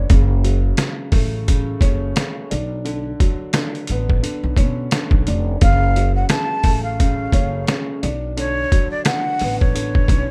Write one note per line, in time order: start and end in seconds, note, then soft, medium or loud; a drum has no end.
0.00 0.12 D3 medium
0.00 0.11 B3 medium
0.00 0.11 C#4 medium
0.00 0.10 D4 medium
0.10 0.71 F#1 loud
0.10 0.77 C#3 loud
0.10 kick loud
0.10 closed hi-hat medium
0.44 2.16 F#3 medium
0.44 closed hi-hat medium
0.77 1.46 C#3 medium
0.77 snare loud
0.77 snare medium
0.77 closed hi-hat loud
1.12 1.73 A1 medium
1.12 2.51 A3 medium
1.12 kick medium
1.12 open hi-hat medium
1.48 2.14 C#3 medium
1.48 kick medium
1.48 closed hi-hat medium
1.81 2.12 F#1 medium
1.81 2.51 C#4 medium
1.81 kick medium
1.81 closed hi-hat medium
2.15 2.51 C#3 medium
2.15 snare loud
2.15 snare medium
2.15 closed hi-hat medium
2.50 3.12 B1 loud
2.50 4.23 D4 medium
2.50 closed hi-hat medium
2.85 3.52 D3 medium
2.85 closed hi-hat medium
3.20 4.93 F#3 medium
3.20 kick loud
3.20 closed hi-hat medium
3.53 4.21 D3 medium
3.53 snare loud
3.53 snare medium
3.53 closed hi-hat loud
3.75 closed hi-hat soft
3.87 4.20 A1 medium
3.87 5.63 B3 medium
3.87 closed hi-hat medium
4.10 kick medium
4.23 4.92 D3 medium
4.23 closed hi-hat medium
4.44 4.58 B1 medium
4.57 4.88 B2 medium
4.57 5.61 C#4 medium
4.57 kick medium
4.57 closed hi-hat medium
4.91 5.62 D3 medium
4.91 snare loud
4.91 snare medium
4.91 closed hi-hat medium
5.11 5.25 B1 medium
5.11 kick medium
5.27 5.58 F1 loud
5.27 5.62 D4 medium
5.27 closed hi-hat medium
5.61 6.22 F#1 loud
5.61 6.29 C#3 medium
5.61 6.13 F5 loud
5.61 kick loud
5.61 closed hi-hat medium
5.96 7.68 F#3 medium
5.96 closed hi-hat medium
6.16 6.29 F#5 medium
6.29 6.98 C#3 medium
6.29 6.81 A5 medium
6.29 snare loud
6.29 snare medium
6.29 closed hi-hat loud
6.63 7.25 A1 medium
6.63 8.03 A3 medium
6.63 kick medium
6.63 open hi-hat medium
6.84 7.64 F5 medium
7.00 7.66 C#3 medium
7.00 kick medium
7.00 closed hi-hat medium
7.32 7.63 F#1 medium
7.32 8.03 C#4 medium
7.32 kick medium
7.32 closed hi-hat medium
7.67 8.02 C#3 medium
7.67 snare loud
7.67 snare medium
7.67 closed hi-hat medium
8.03 8.64 B1 loud
8.03 9.75 D4 medium
8.03 closed hi-hat medium
8.37 9.04 D3 medium
8.37 8.89 C#5 loud
8.37 closed hi-hat medium
8.72 10.31 F#3 medium
8.72 kick loud
8.72 closed hi-hat medium
8.91 9.05 D5 medium
9.05 9.73 D3 medium
9.05 9.57 F#5 medium
9.05 snare loud
9.05 snare medium
9.05 closed hi-hat medium
9.39 10.02 A1 medium
9.39 10.31 B3 medium
9.39 open hi-hat medium
9.60 10.31 C#5 medium
9.60 kick medium
9.75 10.31 D3 medium
9.75 closed hi-hat medium
9.95 kick medium
10.08 10.31 B1 medium
10.08 10.31 C#4 medium
10.08 kick medium
10.08 closed hi-hat medium